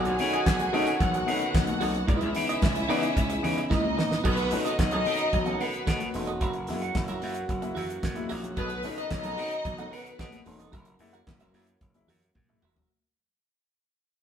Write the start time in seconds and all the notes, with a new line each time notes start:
Already playing: D#3 F#3 A3 B3 F#4 G#4 G#5
0.05 B1 C#4 D#4, muted clean electric guitar stroke, closed hi-hat
0.19 B2 A3 C#4 D#4, muted clean electric guitar stroke, snare, open hi-hat
0.33 F#4 A4 D#5, closed hi-hat
0.46 B1, muted clean electric guitar stroke, kick, snare, clap, high conga
0.59 muted clean electric guitar stroke, closed hi-hat
0.73 B2 A3 C#4 D#4 F#4 A4 D#5, open hi-hat
0.86 muted clean electric guitar stroke, closed hi-hat
0.99 B1 C#4 D#4 F#4 F#5, muted clean electric guitar stroke, kick, closed hi-hat, muted conga, low conga
1.13 B2 F#3, muted clean electric guitar stroke, closed hi-hat
1.26 B2 A3 C#4 D#4, open hi-hat
1.42 muted clean electric guitar stroke, closed hi-hat
1.55 B1 C#4 D#4, kick, snare, clap, high conga
1.67 B2 F#3, muted clean electric guitar stroke, closed hi-hat, high conga
1.81 B1 C#4 D#4 F#4 A4 D#5, open hi-hat
1.95 muted clean electric guitar stroke, closed hi-hat
2.07 C#2 C#3 E3 G#3 C#4 E4 B4 D#5 E5, kick, closed hi-hat, muted conga
2.21 C#2 B3 D#4, muted clean electric guitar stroke, closed hi-hat
2.35 C#3 E3 B3 D#4, muted clean electric guitar stroke, snare, open hi-hat
2.49 E4 B4 D#5, closed hi-hat
2.62 C#2, kick, snare, clap, high conga
2.75 muted clean electric guitar stroke, closed hi-hat
2.89 C#3 E3 B3 D#4 E4 B4 D#5, open hi-hat
3.02 muted clean electric guitar stroke, closed hi-hat
3.16 C#2 B3 D#4, muted clean electric guitar stroke, kick, closed hi-hat, muted conga
3.30 C#3, muted clean electric guitar stroke, closed hi-hat
3.42 C#3 E3 B3 D#4, open hi-hat, muted conga, low conga
3.57 muted clean electric guitar stroke, closed hi-hat
3.70 C#2 C#3 D#4 E4 B4 D#5, kick, snare, high conga
3.83 muted clean electric guitar stroke, high conga
3.97 A1 E3 B3 D#4, muted clean electric guitar stroke, snare
4.11 B3 D#4 E4 B4 D#5, snare
4.24 B1 B2 D#3 F#3 A3 B3 F#4 A4 B4 D#5, kick, crash, muted conga
4.37 muted clean electric guitar stroke, closed hi-hat
4.51 B2 A3 C#4 D#4, muted clean electric guitar stroke, open hi-hat
4.65 C#4 D#4 F#4 A4 D#5, closed hi-hat
4.79 B1 C#4 D#4 D#5, muted clean electric guitar stroke, kick, snare, clap, high conga
4.91 B1 B2 F#3 F#4 A4 D#5, closed hi-hat
5.05 B2 C#4 D#4 F#4 A4 D#5, open hi-hat
5.18 muted clean electric guitar stroke, closed hi-hat
5.33 B1 B2 F#3, muted clean electric guitar stroke, kick, closed hi-hat, muted conga, low conga
5.46 A3 C#4 D#4 F#4 A4 F#5, closed hi-hat
5.60 B2 B3 C#4 D#4 F#4 A4 B4 F#5, open hi-hat, muted conga
5.74 muted clean electric guitar stroke, closed hi-hat
5.86 B2 F#3 F#4 A4 D#5, kick, snare, clap, high conga
6.00 muted clean electric guitar stroke, closed hi-hat, high conga
6.13 E1 A3 C#4 D#4, muted clean electric guitar stroke, open hi-hat
6.27 C#4 D#4 F#4 A4 D#5, closed hi-hat, high conga
6.40 F#1 E3 F#3 A#3 C#4 F#4 A#4 E5, kick, closed hi-hat, muted conga
6.53 muted clean electric guitar stroke, closed hi-hat
6.67 F#2 G#3 A#3 E4, muted clean electric guitar stroke, snare, open hi-hat
6.82 A#3 E4 F#4 A#4 F#5, closed hi-hat
6.94 F#1 A#3 E4, muted clean electric guitar stroke, kick, snare, clap, high conga
7.07 F#1 F#3 F#4 A#4 E5, closed hi-hat
7.21 F#2 A#3 E4 F#4 A#4 E5, open hi-hat
7.34 muted clean electric guitar stroke, closed hi-hat
7.48 F#1 F#3, kick, closed hi-hat, muted conga
7.62 G#3 A#3 E4, muted clean electric guitar stroke, closed hi-hat
7.75 F#2 A#3 E4 F#4 A#4 E5, open hi-hat, muted conga, low conga
7.89 muted clean electric guitar stroke, closed hi-hat
8.02 F#2, muted clean electric guitar stroke, kick, snare, clap, high conga
8.15 G#3 A#3 E4, muted clean electric guitar stroke, closed hi-hat, high conga
8.29 A#1 F#4 A#4 E5, open hi-hat
8.43 F#3, muted clean electric guitar stroke, closed hi-hat, high conga
8.56 B1 B2 D#3 F#3 A3 B3 F#4 A4 B4 D#5, kick, closed hi-hat, muted conga
8.70 muted clean electric guitar stroke, closed hi-hat
8.83 B2 A3 C#4 D#4, muted clean electric guitar stroke, open hi-hat
8.97 C#4 D#4 F#4 A4 D#5, closed hi-hat
9.10 B1 C#4 D#4 D#5, muted clean electric guitar stroke, kick, snare, clap, high conga
9.24 B1 B2 F#3 F#4 A4 D#5, closed hi-hat
9.38 B2 C#4 D#4 F#4 A4 D#5, open hi-hat
9.51 muted clean electric guitar stroke, closed hi-hat
9.65 B1 B2 F#3, muted clean electric guitar stroke, kick, closed hi-hat, muted conga, low conga
9.78 A3 C#4 D#4 F#4 A4 F#5, closed hi-hat
9.91 B2 B3 C#4 D#4 F#4 A4 B4 F#5, open hi-hat
10.05 muted clean electric guitar stroke, closed hi-hat
10.19 B2 F#3 F#4 A4 D#5, kick, snare, clap, high conga
10.32 muted clean electric guitar stroke, closed hi-hat, high conga
10.46 E1 A3 C#4 D#4, muted clean electric guitar stroke, open hi-hat
10.59 C#4 D#4 F#4 A4 D#5, closed hi-hat, high conga
10.72 F#1 E3 F#3 A#3 C#4 F#4 A#4 E5, kick, closed hi-hat, muted conga
10.85 muted clean electric guitar stroke, closed hi-hat
10.99 F#2 G#3 A#3 E4, muted clean electric guitar stroke, open hi-hat
11.13 A#3 E4 F#4 A#4 F#5, closed hi-hat
11.27 F#1 A#3 E4, muted clean electric guitar stroke, kick, snare, clap, high conga
11.40 F#1 F#3 F#4 A#4 E5, closed hi-hat
11.53 F#2 A#3 E4 F#4 A#4 E5, open hi-hat
11.67 muted clean electric guitar stroke, closed hi-hat
11.81 F#1 F#3, kick, closed hi-hat, muted conga
11.94 G#3 A#3 E4, muted clean electric guitar stroke, closed hi-hat
12.07 F#2 A#3 E4 F#4 A#4 E5, open hi-hat, low conga
12.22 muted clean electric guitar stroke, closed hi-hat
12.35 F#2, muted clean electric guitar stroke, kick, high tom, high conga
12.48 G#3 A#3 E4, muted clean electric guitar stroke, mid tom, high conga
12.62 E1 F#4 A#4 E5, mid tom
12.76 F#3 F#4 A#4 E5, floor tom, high conga